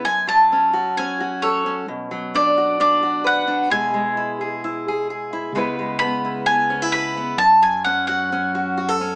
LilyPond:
<<
  \new Staff \with { instrumentName = "Mandolin" } { \time 4/4 \key fis \minor \tempo 4 = 131 gis''8 a''4. gis''4 cis''8. r16 | r4 d''4 d''4 fis''4 | gis''2 r2 | r4 b''4 gis''4 b''4 |
a''8 gis''8 fis''8 fis''2 r8 | }
  \new Staff \with { instrumentName = "Steel-string acoustic guitar" } { \time 4/4 \key fis \minor << { r4 cis'8 fis'8 cis'8 fis'8 a'8 cis'8 | r4 d'8 fis'8 d'8 fis'8 b'8 d'8 | <gis e' gis'>4 e'8 gis'8 e'8 gis'8 gis'8 e'8 | <gis b e' b'>4 b8 e'8 b8 cis'16 e'16 b'8 b8 |
r4 cis'8 fis'8 cis'8 fis'8 fis'16 a'16 cis'8 | } \\ { fis,8 fis2.~ fis8 | b,8 fis2.~ fis8 | b,8 gis2.~ gis8 | cis8 gis2.~ gis8 |
fis,8 fis2.~ fis8 | } >> }
  \new Staff \with { instrumentName = "Fingered electric bass" } { \clef bass \time 4/4 \key fis \minor r1 | r1 | r1 | cis,1 |
fis,1 | }
>>